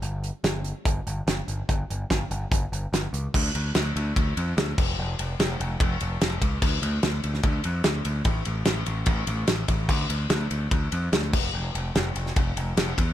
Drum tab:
CC |----------------|----------------|x-------------x-|----------------|
RD |----------------|----------------|--x-x-x-x-x-x---|--x-x-x-x-x-x-x-|
HH |x-x-x-x-x-x-x-x-|x-x-x-x-x-x-x-x-|----------------|----------------|
SD |----o-------o---|----o-------o---|----o-------o---|----o-------o---|
BD |--------o-------|o---o---o-------|o-------o-----o-|--------o-----o-|

CC |x---------------|----------------|x-------------x-|----------------|
RD |--x-x-x-x-x-x-x-|x-x-x-x-x-x-x-x-|--x-x-x-x-x-x---|--x-x-x-x-x-x-x-|
HH |----------------|----------------|----------------|----------------|
SD |----o--o----o---|----o-------o---|----o-------o---|----o--o----o---|
BD |o-------o-------|o-------o-----o-|o-------o-----o-|--------o-----o-|